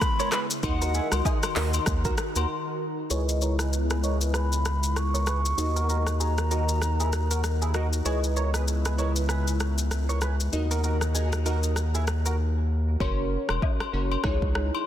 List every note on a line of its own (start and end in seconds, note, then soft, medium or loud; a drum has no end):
0.00 0.61 C#3 medium
0.00 0.61 G#3 medium
0.00 0.61 B3 medium
0.00 0.61 E4 loud
0.00 0.32 B5 loud
0.00 kick loud
0.00 cross-stick loud
0.00 shaker medium
0.19 0.29 A#4 medium
0.19 0.29 C#5 medium
0.19 high agogo medium
0.19 shaker medium
0.32 0.45 G#4 medium
0.32 0.45 B4 medium
0.32 0.39 B5 loud
0.32 cross-stick medium
0.32 clap loud
0.32 shaker medium
0.51 shaker loud
0.63 1.00 D#2 loud
0.63 3.08 D#3 medium
0.63 1.50 D#4 loud
0.63 3.08 D#4 medium
0.63 1.50 F#4 medium
0.63 3.08 F#4 medium
0.63 1.50 A#4 medium
0.63 3.08 A#4 medium
0.63 1.50 D#5 loud
0.63 1.21 F#5 medium
0.63 kick loud
0.63 high agogo medium
0.63 shaker medium
0.82 0.91 F#4 medium
0.82 0.90 A#4 medium
0.82 shaker medium
0.94 1.07 E4 medium
0.94 1.07 G#4 medium
0.94 shaker soft
1.12 1.22 C#2 medium
1.12 cross-stick medium
1.12 high agogo medium
1.12 shaker loud
1.25 1.38 D#4 medium
1.25 1.38 G#4 medium
1.25 kick loud
1.25 low woodblock medium
1.25 shaker medium
1.43 cross-stick medium
1.43 high agogo medium
1.43 shaker medium
1.56 1.79 D#2 loud
1.56 1.85 D#4 medium
1.56 1.85 F#4 medium
1.56 1.69 F#4 medium
1.56 1.85 A#4 medium
1.56 1.69 A#4 medium
1.56 1.85 D#5 medium
1.56 clap medium
1.56 open hi-hat medium
1.56 shaker medium
1.73 high agogo medium
1.73 shaker medium
1.86 2.10 D#2 loud
1.86 kick loud
1.86 cross-stick loud
1.86 shaker medium
2.05 2.15 F#4 medium
2.05 2.14 A#4 medium
2.05 kick loud
2.05 shaker medium
2.18 cross-stick loud
2.18 shaker medium
2.36 2.46 D#2 loud
2.36 2.45 F#4 medium
2.36 2.45 A#4 medium
2.36 high agogo medium
2.36 shaker loud
3.10 5.54 C#2 medium
3.10 5.56 C#3 medium
3.10 5.56 G#3 medium
3.10 5.56 B3 medium
3.10 3.97 E4 medium
3.10 5.56 E4 medium
3.10 3.97 G#4 medium
3.10 3.24 G#4 medium
3.10 3.97 B4 medium
3.10 3.23 C#5 medium
3.10 3.97 D#5 medium
3.10 shaker medium
3.29 shaker medium
3.42 3.55 A#4 medium
3.42 3.54 C#5 medium
3.42 shaker soft
3.59 3.69 G#4 soft
3.59 3.69 B4 medium
3.59 cross-stick medium
3.59 shaker medium
3.73 shaker medium
3.90 4.00 G#4 medium
3.90 4.00 B4 medium
3.90 cross-stick medium
3.90 shaker medium
4.03 4.32 E4 medium
4.03 4.32 G#4 medium
4.03 4.16 A#4 medium
4.03 4.32 B4 medium
4.03 4.16 C#5 medium
4.03 4.32 D#5 medium
4.03 shaker soft
4.21 shaker medium
4.34 4.56 G#4 medium
4.34 4.56 B4 medium
4.34 4.98 B5 loud
4.34 cross-stick medium
4.34 shaker medium
4.52 shaker soft
4.65 cross-stick medium
4.65 shaker medium
4.83 shaker medium
4.96 6.22 C#6 loud
4.96 cross-stick medium
4.96 shaker medium
5.14 5.24 A#4 medium
5.14 5.23 C#5 medium
5.14 shaker soft
5.27 5.40 G#4 medium
5.27 5.40 B4 medium
5.27 cross-stick medium
5.27 shaker medium
5.46 shaker medium
5.58 8.02 D#2 medium
5.58 8.03 D#3 medium
5.58 6.44 D#4 medium
5.58 8.03 D#4 medium
5.58 6.45 F#4 medium
5.58 8.03 F#4 medium
5.58 6.45 A#4 medium
5.58 8.03 A#4 medium
5.58 6.45 D#5 loud
5.58 shaker medium
5.76 5.86 F#4 medium
5.76 5.85 A#4 medium
5.76 shaker medium
5.89 6.02 F#4 medium
5.89 6.02 A#4 medium
5.89 shaker soft
6.07 cross-stick medium
6.07 shaker medium
6.20 6.33 D#4 medium
6.20 6.33 G#4 medium
6.20 7.75 A#5 medium
6.20 shaker medium
6.38 cross-stick medium
6.38 shaker medium
6.51 6.80 D#4 medium
6.51 6.80 F#4 medium
6.51 6.64 F#4 medium
6.51 6.63 A#4 medium
6.51 6.80 A#4 medium
6.51 6.80 D#5 medium
6.51 shaker soft
6.69 shaker medium
6.82 cross-stick medium
6.82 shaker medium
7.00 7.09 E4 medium
7.00 7.09 G#4 medium
7.00 shaker soft
7.13 cross-stick medium
7.13 shaker medium
7.31 7.40 F#4 medium
7.31 7.40 A#4 medium
7.31 shaker medium
7.44 cross-stick medium
7.44 shaker medium
7.62 7.71 E4 medium
7.62 7.71 G#4 medium
7.62 shaker medium
7.74 7.94 D#4 medium
7.74 7.94 F#4 medium
7.74 7.88 F#4 medium
7.74 7.94 A#4 medium
7.74 7.87 A#4 medium
7.74 7.94 D#5 medium
7.74 cross-stick medium
7.74 shaker medium
7.93 shaker loud
8.05 10.49 C#2 medium
8.05 10.51 C#3 medium
8.05 10.50 G#3 medium
8.05 10.51 B3 medium
8.05 8.92 E4 medium
8.05 10.50 E4 medium
8.05 8.92 G#4 medium
8.05 8.19 G#4 medium
8.05 8.92 B4 medium
8.05 8.18 C#5 medium
8.05 8.92 D#5 medium
8.05 shaker medium
8.24 shaker medium
8.36 8.49 A#4 medium
8.36 8.49 C#5 medium
8.36 shaker soft
8.54 8.64 G#4 soft
8.54 8.63 B4 medium
8.54 cross-stick medium
8.54 shaker medium
8.68 shaker medium
8.85 8.95 G#4 medium
8.85 8.94 B4 medium
8.85 cross-stick medium
8.85 shaker medium
8.98 9.27 E4 medium
8.98 9.27 G#4 medium
8.98 9.11 A#4 medium
8.98 9.27 B4 medium
8.98 9.11 C#5 medium
8.98 9.27 D#5 medium
8.98 shaker soft
9.16 shaker medium
9.29 9.51 G#4 medium
9.29 9.51 B4 medium
9.29 cross-stick medium
9.29 shaker medium
9.47 shaker soft
9.60 cross-stick medium
9.60 shaker medium
9.78 shaker medium
9.91 cross-stick medium
9.91 shaker medium
10.09 10.19 A#4 medium
10.09 10.18 C#5 medium
10.09 shaker medium
10.21 10.35 G#4 medium
10.21 10.34 B4 medium
10.21 cross-stick medium
10.21 shaker medium
10.40 shaker medium
10.53 12.96 D#2 medium
10.53 12.98 D#3 medium
10.53 11.39 D#4 medium
10.53 12.98 D#4 medium
10.53 11.39 F#4 medium
10.53 12.98 F#4 medium
10.53 11.40 A#4 medium
10.53 12.98 A#4 medium
10.53 11.40 D#5 loud
10.53 shaker medium
10.71 10.80 F#4 medium
10.71 10.80 A#4 medium
10.71 shaker medium
10.84 10.97 F#4 medium
10.84 10.96 A#4 medium
10.84 shaker soft
11.01 cross-stick medium
11.01 shaker medium
11.15 11.28 D#4 medium
11.15 11.27 G#4 medium
11.15 shaker medium
11.32 cross-stick medium
11.32 shaker medium
11.45 11.74 D#4 medium
11.45 11.75 F#4 medium
11.45 11.59 F#4 medium
11.45 11.58 A#4 medium
11.45 11.75 A#4 medium
11.45 11.75 D#5 medium
11.45 shaker soft
11.63 shaker medium
11.76 cross-stick medium
11.76 shaker medium
11.95 12.04 E4 medium
11.95 12.04 G#4 medium
11.95 shaker soft
12.07 cross-stick loud
12.07 shaker medium
12.26 12.35 F#4 medium
12.26 12.35 A#4 medium
12.26 shaker medium
13.00 13.37 F#1 loud
13.00 13.87 C#4 medium
13.00 13.87 F#4 medium
13.00 13.87 A#4 medium
13.00 13.87 C#5 loud
13.00 kick loud
13.00 high agogo medium
13.49 13.59 E1 medium
13.49 cross-stick medium
13.49 high agogo medium
13.62 kick loud
13.62 low woodblock medium
13.80 cross-stick medium
13.80 high agogo medium
13.93 14.17 F#1 loud
13.93 14.22 C#4 medium
13.93 14.22 F#4 medium
13.93 14.22 A#4 medium
13.93 14.22 C#5 medium
14.12 high agogo medium
14.24 14.71 C#2 loud
14.24 14.87 D#4 medium
14.24 14.87 E4 medium
14.24 14.87 G#4 medium
14.24 14.87 C#5 loud
14.24 kick loud
14.24 cross-stick loud
14.42 kick loud
14.55 cross-stick loud
14.75 high agogo medium